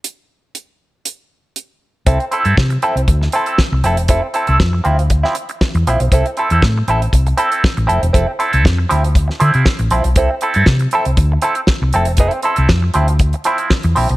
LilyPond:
<<
  \new Staff \with { instrumentName = "Clean electric guitar" } { \time 4/4 \key c \major \tempo 4 = 119 r1 | <c' e' a'>16 r16 <c' e' a'>16 <c' e' a'>16 r8 <c' e' a'>16 r8. <c' e' a'>16 <c' e' a'>16 r8 <c' e' a'>16 r16 | <c' e' a'>16 r16 <c' e' a'>16 <c' e' a'>16 r8 <f c' e'>16 r8 <f c' e'>16 r4 <f c' e'>16 r16 | <c' e' a'>16 r16 <c' e' a'>16 <c' e' a'>16 r8 <c' e' a'>16 r8. <c' e' a'>16 <c' e' a'>16 r8 <c' e' a'>16 r16 |
<c' e' a'>16 r16 <c' e' a'>16 <c' e' a'>16 r8 <f c' e'>16 r8. <f c' e'>16 <f c' e'>16 r8 <f c' e'>16 r16 | <c' e' a'>16 r16 <c' e' a'>16 <c' e' a'>16 r8 <c' e' a'>16 r8. <c' e' a'>16 r8. <c' e' a'>16 r16 | <c' e' a'>8 <c' e' a'>16 <c' e' a'>16 r8 <f c' e'>16 r8. <f c' e'>16 <f c' e'>16 r8 <f c' e'>16 r16 | }
  \new Staff \with { instrumentName = "Fingered electric bass" } { \clef bass \time 4/4 \key c \major r1 | c,16 r8 g,16 c8 r16 c,16 d,8 r8. c,16 f,,16 e,,16 | f,,16 r8 c,16 f,8 d,4 r8. e,16 bes,,16 b,,16 | c,16 r8 e,16 a,8 a,,8 c,8 r8. a,,16 f,,16 e,,16 |
f,,16 r8 c,16 f,8 d,4 d16 c16 r16 a,,16 bes,,16 b,,16 | c,16 r8 g,16 c8 r16 c,16 d,8 r8. c,16 f,,16 e,,16 | f,,16 r8 c,16 f,8 d,4 r8. e,16 bes,,16 b,,16 | }
  \new DrumStaff \with { instrumentName = "Drums" } \drummode { \time 4/4 hh4 hh4 hh4 hh4 | <hh bd>16 hh16 hh16 hh16 <bd sn>16 hh16 hh16 hh16 <hh bd>16 sn16 hh16 hh16 <bd sn>8 hh16 hh16 | <hh bd>8 hh16 hh16 <bd sn>8 hh16 hh16 <hh bd>16 sn16 hh16 hh16 <bd sn>16 hh16 hh16 hh16 | <hh bd>16 hh16 hh16 hh16 <bd sn>8 hh16 hh16 <hh bd>16 hh16 hh16 hh16 <bd sn>16 hh16 hh16 hh16 |
<hh bd>8 hh16 hh16 <bd sn>8 hh16 hh16 <hh bd>16 sn16 hh16 hh16 <bd sn>16 hh16 hh16 hh16 | <hh bd>8 hh16 hh16 <bd sn>16 hh16 hh16 hh16 <hh bd>8 hh16 hh16 <bd sn>8 hh16 hh16 | <hh bd>16 hh16 hh16 hh16 <bd sn>8 hh16 hh16 <hh bd>16 hh16 hh16 hh16 <bd sn>16 hh16 hho16 hh16 | }
>>